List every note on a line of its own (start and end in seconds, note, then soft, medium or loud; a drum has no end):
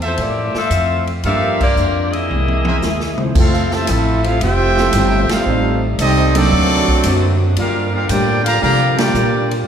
0.00 0.16 E2 loud
0.00 0.67 F4 medium
0.00 0.67 A4 medium
0.00 0.68 C5 medium
0.00 0.67 E5 loud
0.00 ride soft
0.07 0.20 A3 medium
0.07 0.20 E4 medium
0.07 0.20 F4 medium
0.07 0.20 C5 medium
0.17 0.55 F2 soft
0.17 0.52 A2 medium
0.17 0.56 E3 soft
0.17 0.57 A3 soft
0.17 0.57 C4 medium
0.17 ride medium
0.21 0.57 A#3 medium
0.21 0.56 E4 medium
0.21 0.56 G4 medium
0.21 0.56 D5 loud
0.54 1.05 C4 medium
0.54 1.05 F4 medium
0.54 1.05 A4 medium
0.54 1.05 E5 loud
0.54 muted upright bass stroke soft
0.54 snare medium
0.70 1.22 F2 loud
0.70 1.09 F2 medium
0.70 1.09 E3 medium
0.70 1.09 A3 medium
0.70 1.10 C4 medium
0.70 hi-hat pedal medium
0.70 ride medium
1.07 ride soft
1.23 1.61 G2 soft
1.23 1.75 G2 medium
1.23 1.62 F3 medium
1.23 1.57 F3 medium
1.23 1.57 G3 soft
1.23 1.63 A#3 medium
1.23 1.58 A#3 medium
1.23 1.58 C4 medium
1.23 1.58 D4 medium
1.23 1.58 F4 medium
1.23 2.06 G4 medium
1.23 1.58 G4 medium
1.23 1.58 A4 medium
1.23 2.06 A#4 medium
1.23 2.06 D5 medium
1.23 1.58 E5 loud
1.23 2.06 F5 loud
1.23 ride medium
1.27 1.64 D4 medium
1.61 2.10 A#3 medium
1.61 2.10 F4 medium
1.61 2.10 G4 medium
1.61 2.10 D5 loud
1.61 kick medium
1.61 crash medium
1.76 2.28 F2 loud
1.76 2.14 G2 medium
1.76 2.15 F3 medium
1.76 2.15 A#3 medium
1.76 2.15 D4 medium
1.76 hi-hat pedal soft
2.11 3.18 G#3 medium
2.11 3.18 A#3 medium
2.11 3.18 E4 medium
2.11 3.18 G#4 medium
2.11 3.18 D#5 medium
2.11 3.18 E5 medium
2.11 ride soft
2.30 2.81 C2 medium
2.30 2.68 C3 soft
2.30 2.69 G#3 soft
2.30 2.69 A#3 soft
2.30 2.69 E4 medium
2.30 high tom soft
2.48 high tom medium
2.65 2.77 G#4 medium
2.65 2.77 A#4 medium
2.65 2.77 C5 medium
2.65 2.77 E5 medium
2.65 high tom medium
2.81 3.33 D#2 medium
2.81 3.20 C3 medium
2.81 3.21 G#3 medium
2.81 3.21 A#3 medium
2.81 3.22 E4 medium
2.81 snare medium
2.81 hi-hat pedal medium
3.00 snare medium
3.18 3.33 F3 medium
3.18 3.34 A3 medium
3.18 3.34 C4 medium
3.18 3.34 E4 soft
3.18 3.34 C5 medium
3.18 mid tom medium
3.33 3.86 F2 medium
3.33 5.45 C3 medium
3.33 3.72 F3 medium
3.33 5.45 F3 medium
3.33 3.73 A3 medium
3.33 3.69 A3 loud
3.33 6.49 A3 medium
3.33 3.74 C4 medium
3.33 3.70 C4 loud
3.33 3.74 E4 medium
3.33 5.44 F4 medium
3.33 3.69 F4 medium
3.33 kick medium
3.33 crash loud
3.38 3.71 C4 medium
3.38 3.71 E4 medium
3.38 3.71 A4 medium
3.38 3.71 F5 medium
3.53 snare soft
3.71 3.88 C3 medium
3.71 3.88 E3 medium
3.71 3.87 A3 loud
3.71 3.89 F4 medium
3.71 3.89 C5 medium
3.71 3.89 E5 loud
3.71 3.89 A5 medium
3.71 snare medium
3.87 4.40 A1 loud
3.87 4.25 F3 medium
3.87 4.26 A3 medium
3.87 4.24 A3 medium
3.87 4.24 C4 medium
3.87 4.26 C4 medium
3.87 4.24 E4 medium
3.87 4.26 E4 medium
3.87 4.25 F4 medium
3.87 4.25 A4 medium
3.87 4.26 E5 loud
3.87 hi-hat pedal medium
3.87 ride medium
3.91 4.25 C4 medium
4.24 4.41 A3 medium
4.24 4.41 C4 medium
4.24 4.42 C4 medium
4.24 4.42 E4 medium
4.24 4.40 F4 medium
4.24 4.42 A4 medium
4.24 4.42 F5 loud
4.24 ride medium
4.39 4.92 F1 loud
4.39 4.78 F3 medium
4.39 4.79 A3 soft
4.39 5.26 C4 loud
4.39 4.79 C4 medium
4.39 4.80 E4 medium
4.39 5.26 F4 medium
4.39 5.26 F4 loud
4.39 5.27 G4 medium
4.39 5.26 C5 loud
4.39 5.27 E5 loud
4.39 5.26 G5 loud
4.39 ride medium
4.77 4.92 F3 medium
4.77 4.92 A3 medium
4.77 4.92 C4 medium
4.77 4.93 E4 medium
4.77 4.93 A4 medium
4.77 snare medium
4.93 5.27 G1 loud
4.93 5.32 F3 medium
4.93 5.32 A3 medium
4.93 5.32 C4 medium
4.93 5.33 E4 medium
4.93 hi-hat pedal medium
4.93 ride medium
5.29 5.83 G3 medium
5.29 5.83 C4 medium
5.29 5.84 D#4 medium
5.29 5.83 F4 medium
5.29 5.84 A4 medium
5.29 5.84 C5 medium
5.29 5.84 F5 loud
5.29 muted upright bass stroke soft
5.29 snare loud
5.29 ride medium
5.45 5.97 A1 medium
5.45 5.84 A2 medium
5.45 7.55 C3 medium
5.45 6.51 G3 medium
5.45 5.85 G3 medium
5.45 5.80 G3 medium
5.45 5.80 A3 medium
5.45 5.85 C4 medium
5.45 5.80 C4 medium
5.45 6.51 D#4 medium
5.45 5.80 D#4 medium
5.45 5.86 D#4 medium
5.45 5.80 A4 medium
5.98 6.50 C2 loud
5.98 6.37 A2 medium
5.98 6.33 G3 medium
5.98 6.37 G3 medium
5.98 6.33 C4 loud
5.98 6.38 C4 medium
5.98 6.34 C4 loud
5.98 6.33 D#4 loud
5.98 6.38 D#4 medium
5.98 6.33 G4 loud
5.98 6.33 A4 loud
5.98 6.33 D#5 loud
5.98 hi-hat pedal medium
5.98 ride medium
6.34 7.01 F#3 medium
6.34 7.41 F#3 loud
6.34 7.41 A3 loud
6.34 7.01 A#3 medium
6.34 7.01 C4 medium
6.34 7.41 C4 loud
6.34 7.01 D4 medium
6.34 7.41 D4 loud
6.34 7.41 F#4 loud
6.34 7.41 A4 loud
6.34 7.01 A4 medium
6.34 7.41 D5 loud
6.34 ride medium
6.51 6.85 D2 loud
6.51 6.89 D3 medium
6.51 7.57 F#3 medium
6.51 6.90 A#3 medium
6.51 6.91 C4 soft
6.51 9.67 C4 medium
6.51 6.91 F#4 medium
6.55 7.58 D4 loud
6.88 muted upright bass stroke soft
6.88 kick medium
7.03 7.55 F#2 loud
7.03 7.43 D3 medium
7.03 7.43 A#3 medium
7.03 7.43 C4 medium
7.03 7.44 F#4 medium
7.03 hi-hat pedal medium
7.03 ride medium
7.56 8.08 G2 medium
7.56 9.66 D3 medium
7.56 9.66 G3 medium
7.56 7.95 G3 medium
7.56 7.91 A#3 medium
7.56 7.91 D4 medium
7.56 7.96 D4 medium
7.56 9.67 F4 loud
7.56 7.91 F4 medium
7.56 7.96 F4 medium
7.56 7.91 G4 medium
7.56 7.92 A#4 medium
7.56 7.92 F5 medium
7.56 ride medium
7.61 7.97 A#4 medium
7.92 8.07 A#3 medium
7.92 8.07 D4 medium
7.92 8.09 D4 medium
7.92 8.08 F4 medium
7.92 8.09 G4 medium
7.92 8.08 A#4 medium
7.92 8.09 F5 medium
8.08 8.61 A2 loud
8.08 8.48 G3 medium
8.08 8.43 A#3 medium
8.08 8.45 D4 loud
8.08 8.48 D4 medium
8.08 8.46 F4 loud
8.08 8.48 F4 medium
8.08 8.45 G4 medium
8.08 8.46 A#4 medium
8.08 8.49 A#4 medium
8.08 8.43 D5 medium
8.08 8.46 G5 loud
8.08 hi-hat pedal medium
8.08 ride medium
8.44 8.59 D3 loud
8.44 8.59 F3 medium
8.44 8.59 A#3 medium
8.44 8.60 G4 loud
8.44 8.60 D5 medium
8.44 8.60 F5 loud
8.44 8.61 A#5 loud
8.44 ride medium
8.60 9.13 C3 loud
8.60 8.95 D3 loud
8.60 8.95 F3 loud
8.60 9.00 G3 medium
8.60 8.95 A#3 loud
8.60 9.01 D4 medium
8.60 9.01 F4 medium
8.60 8.96 G4 loud
8.60 8.96 D5 loud
8.60 8.96 F5 loud
8.60 8.96 A#5 loud
8.64 9.02 A#4 medium
8.97 9.13 G3 medium
8.97 9.51 A#3 medium
8.97 9.13 A#3 medium
8.97 9.13 D4 medium
8.97 9.51 D4 medium
8.97 9.14 F4 medium
8.97 9.53 F4 medium
8.97 9.51 G4 medium
8.97 9.13 A#4 medium
8.97 9.52 A#4 medium
8.97 9.52 D5 medium
8.97 9.52 G5 medium
8.97 snare loud
8.97 ride medium
9.14 9.66 A#2 loud
9.14 9.53 G3 medium
9.14 9.53 D4 medium
9.14 9.53 F4 medium
9.14 9.54 A#4 medium
9.14 hi-hat pedal medium
9.51 ride medium